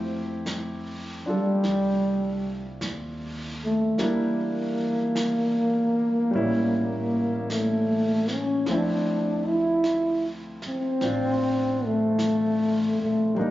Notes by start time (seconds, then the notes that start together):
Already playing: F2 F3 A3 C4 E4 G4
0.46 brush sweep, snare, hi-hat pedal
1.26 G3 D4 F4 A4, muted upright bass stroke
1.64 C2, brush sweep, snare
2.81 D#2, brush sweep, snare, hi-hat pedal
3.65 A3
3.98 E2 G3 A#3 D4 E4, brush sweep, snare
5.16 brush sweep, snare, hi-hat pedal
6.31 A1 A#2 G3 C#4, brush sweep
6.36 E4
7.50 A3, brush sweep, snare, hi-hat pedal
8.28 snare
8.33 C#4
8.66 D2 F3 A3 C4 D4, brush sweep, snare
8.71 E4
9.48 E4
9.84 brush sweep, snare, hi-hat pedal
10.62 muted upright bass stroke, snare
10.68 C4
11.01 A1 C4 D4 F4, brush sweep, snare
11.85 A3
12.19 brush sweep, snare, hi-hat pedal
13.01 A#1 A3
13.35 C2 G3 A#3 D4, brush sweep
13.39 A#3 D#4